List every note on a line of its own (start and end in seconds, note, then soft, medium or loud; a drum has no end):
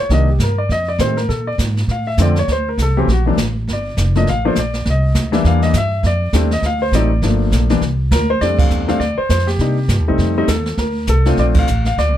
0.00 0.10 C#5 medium
0.09 0.38 C2 medium
0.09 0.27 D#3 medium
0.09 0.27 G3 soft
0.09 0.27 A#3 soft
0.09 0.27 D4 medium
0.09 brush sweep soft
0.09 kick soft
0.09 snare soft
0.14 0.29 D#5 medium
0.30 0.40 G4 soft
0.39 0.68 G2 medium
0.39 kick soft
0.39 snare medium
0.39 hi-hat pedal medium
0.43 0.59 A#4 medium
0.58 0.70 D5 medium
0.69 0.98 F2 medium
0.69 0.88 D#5 medium
0.69 brush sweep soft
0.69 kick soft
0.69 snare soft
0.88 1.00 D5 medium
0.99 1.28 A2 medium
0.99 1.16 D#3 medium
0.99 1.16 G3 soft
0.99 1.16 A3 soft
0.99 1.16 C4 medium
0.99 1.17 C5 medium
0.99 kick soft
0.99 snare medium
0.99 hi-hat pedal medium
1.17 1.29 A#4 medium
1.17 snare soft
1.29 1.58 A#2 medium
1.29 1.46 A4 medium
1.29 brush sweep soft
1.29 kick soft
1.29 snare soft
1.47 1.54 D5 medium
1.58 1.87 G#2 loud
1.58 kick soft
1.58 snare medium
1.58 hi-hat pedal medium
1.77 snare soft
1.88 2.17 A2 medium
1.88 2.07 F5 medium
1.88 brush sweep soft
1.88 kick soft
1.88 snare soft
2.07 2.18 E5 medium
2.17 2.47 F2 medium
2.17 2.35 D3 medium
2.17 2.35 F3 medium
2.17 2.35 A3 medium
2.17 2.35 C4 medium
2.17 kick soft
2.17 snare medium
2.17 hi-hat pedal medium
2.22 2.38 D5 medium
2.36 2.49 C#5 medium
2.36 snare soft
2.48 2.77 D2 medium
2.48 brush sweep soft
2.48 kick soft
2.48 snare soft
2.52 2.67 C5 medium
2.69 2.79 A#4 medium
2.78 3.06 C2 medium
2.78 kick soft
2.78 snare medium
2.78 hi-hat pedal soft
2.82 2.97 A4 medium
2.97 3.07 E3 medium
2.97 3.07 F#3 medium
2.97 3.08 A3 medium
2.97 3.08 C4 medium
2.97 3.08 G4 medium
3.07 3.36 A#1 medium
3.07 brush sweep soft
3.07 kick soft
3.07 snare soft
3.12 3.21 F#4 medium
3.26 3.36 E3 medium
3.26 3.37 F#3 medium
3.26 3.37 A3 medium
3.26 3.37 D4 medium
3.37 3.66 A1 medium
3.37 kick soft
3.37 snare medium
3.37 hi-hat pedal medium
3.67 3.96 G1 medium
3.67 brush sweep soft
3.67 kick soft
3.67 snare soft
3.73 4.14 D5 medium
3.97 4.26 F1 medium
3.97 kick soft
3.97 snare medium
3.97 hi-hat pedal medium
4.15 4.26 F3 medium
4.15 4.26 A3 medium
4.15 4.26 A#3 medium
4.15 4.26 D4 medium
4.15 4.27 D#5 medium
4.15 snare soft
4.27 4.55 A1 medium
4.27 4.45 F5 medium
4.27 brush sweep soft
4.27 kick soft
4.27 snare soft
4.45 4.56 F3 medium
4.45 4.55 A3 medium
4.45 4.55 A#3 medium
4.45 4.55 D4 medium
4.45 4.57 C5 medium
4.55 4.84 A#1 medium
4.55 kick soft
4.55 snare medium
4.55 hi-hat pedal medium
4.59 4.85 D5 medium
4.74 snare soft
4.85 5.14 C2 medium
4.85 brush sweep medium
4.85 kick soft
4.85 snare medium
4.90 5.32 D#5 medium
5.15 5.44 D2 medium
5.15 kick soft
5.15 snare medium
5.15 hi-hat pedal medium
5.32 5.72 E3 medium
5.32 5.72 G3 medium
5.32 5.72 A#3 medium
5.32 5.72 D4 medium
5.32 5.45 E5 medium
5.32 snare soft
5.44 5.73 E2 medium
5.44 5.63 F5 medium
5.44 brush sweep soft
5.44 kick soft
5.44 snare soft
5.62 5.74 D#5 medium
5.62 snare soft
5.73 6.03 G2 medium
5.73 kick soft
5.73 snare medium
5.73 hi-hat pedal medium
5.77 6.04 E5 loud
6.03 6.32 F2 medium
6.03 6.49 D5 medium
6.03 brush sweep soft
6.03 kick soft
6.03 snare soft
6.33 6.61 D#2 medium
6.33 6.50 G3 medium
6.33 6.50 A3 medium
6.33 6.50 C4 medium
6.33 6.50 D4 medium
6.33 kick soft
6.33 snare medium
6.33 hi-hat pedal medium
6.51 6.64 D#5 medium
6.51 snare soft
6.62 6.91 D2 medium
6.62 6.82 F5 medium
6.62 brush sweep medium
6.62 kick soft
6.62 snare soft
6.82 6.93 C5 medium
6.92 7.21 A1 medium
6.92 7.10 F#3 medium
6.92 7.10 A3 medium
6.92 7.09 C4 medium
6.92 7.10 D#4 medium
6.92 7.21 D5 medium
6.92 kick soft
6.92 snare medium
6.92 hi-hat pedal medium
7.22 7.51 G1 medium
7.22 7.67 F3 medium
7.22 7.66 A3 medium
7.22 7.67 A#3 medium
7.22 7.67 D4 medium
7.22 brush sweep soft
7.22 kick soft
7.22 snare medium
7.51 7.80 A#1 medium
7.51 kick soft
7.51 snare medium
7.51 hi-hat pedal medium
7.70 7.81 E3 medium
7.70 7.81 G3 medium
7.70 7.81 A#3 medium
7.70 7.81 D4 medium
7.70 snare soft
7.81 8.10 C2 medium
7.81 brush sweep soft
7.81 kick soft
7.81 snare soft
8.11 8.40 D2 medium
8.11 8.30 A#4 loud
8.11 kick soft
8.11 snare medium
8.11 hi-hat pedal medium
8.30 8.40 C5 loud
8.41 8.70 F2 medium
8.41 8.85 G3 medium
8.41 8.85 A3 medium
8.41 8.85 C4 medium
8.41 8.86 D4 medium
8.41 8.57 D5 loud
8.41 brush sweep soft
8.41 kick soft
8.41 snare soft
8.59 8.88 F5 medium
8.59 kick medium
8.59 crash medium
8.70 8.99 E2 medium
8.70 hi-hat pedal medium
8.88 8.99 G3 medium
8.88 8.99 A3 medium
8.88 8.99 C4 medium
8.88 8.99 D4 medium
8.88 9.01 F5 medium
8.88 snare soft
8.99 9.16 D2 medium
8.99 9.16 D5 medium
8.99 brush sweep soft
8.99 kick soft
8.99 snare soft
9.18 9.29 C5 medium
9.18 muted upright bass stroke soft
9.29 9.58 F2 medium
9.29 9.47 C5 medium
9.29 kick soft
9.29 snare medium
9.29 hi-hat pedal medium
9.39 snare soft
9.47 10.03 G4 medium
9.47 snare soft
9.59 9.88 C3 medium
9.59 9.76 G3 soft
9.59 9.76 A#3 medium
9.59 9.76 D4 soft
9.59 9.76 D#4 medium
9.59 brush sweep soft
9.59 kick soft
9.59 snare soft
9.88 9.99 G2 medium
9.88 kick soft
9.88 snare medium
9.88 hi-hat pedal medium
9.99 10.09 D#2 medium
10.08 10.17 C2 medium
10.08 10.35 G3 medium
10.08 10.35 A3 medium
10.08 10.36 C4 medium
10.08 10.35 D#4 medium
10.18 10.47 F2 medium
10.18 brush sweep soft
10.18 kick soft
10.18 snare soft
10.37 10.48 G3 medium
10.37 10.48 A3 medium
10.37 10.48 C4 medium
10.37 10.48 D#4 medium
10.48 10.77 D#2 medium
10.48 10.79 A4 medium
10.48 kick soft
10.48 snare medium
10.48 hi-hat pedal medium
10.66 snare soft
10.77 11.07 D2 medium
10.77 11.09 A#4 medium
10.77 brush sweep medium
10.77 kick soft
10.77 snare soft
11.07 11.37 C2 medium
11.07 11.39 A4 medium
11.07 kick soft
11.07 snare medium
11.07 hi-hat pedal medium
11.25 11.65 A3 medium
11.25 11.66 C4 medium
11.25 11.65 D4 medium
11.25 11.66 F4 medium
11.25 snare soft
11.37 11.66 A#1 medium
11.37 11.44 D5 medium
11.37 brush sweep soft
11.37 kick soft
11.37 snare soft
11.54 kick medium
11.54 crash medium
11.59 11.85 F5 medium
11.67 11.97 A1 medium
11.67 hi-hat pedal medium
11.85 11.97 F5 medium
11.85 snare soft
11.97 12.09 D2 medium
11.97 12.18 D5 medium
11.97 brush sweep soft
11.97 kick soft
11.97 snare soft
12.09 12.17 C2 medium